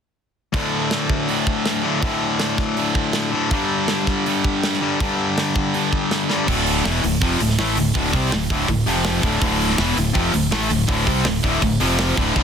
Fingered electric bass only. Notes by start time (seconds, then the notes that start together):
6.49 D1
6.85 E1
7.04 D1
7.22 F1
7.41 D1
7.59 A1
7.77 D1
7.95 D1
8.14 C2
8.33 D1
8.51 D1
8.69 D1
8.87 F1
9.24 D1
9.42 D1
9.79 E1
9.97 D1
10.15 F1
10.34 D1
10.52 A1
10.71 D1
10.89 D1
11.08 C2
11.26 D1
11.44 D1
11.63 D1
11.81 F1
12.18 D1
12.36 D1